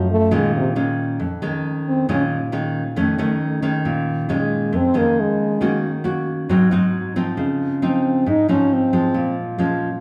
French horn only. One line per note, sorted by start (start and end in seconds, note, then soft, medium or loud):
0.00 0.10 F#3 medium
0.11 0.36 A3 medium
0.34 0.55 G#3 medium
0.56 0.69 C3 medium
1.88 2.08 C4 medium
2.11 2.23 C#4 medium
4.32 4.77 G#3 medium
4.76 4.99 C4 medium
4.97 5.22 A#3 medium
5.20 5.85 G#3 medium
7.85 8.30 C4 medium
8.29 8.49 D#4 medium
8.50 8.75 C#4 medium
8.73 9.38 C4 medium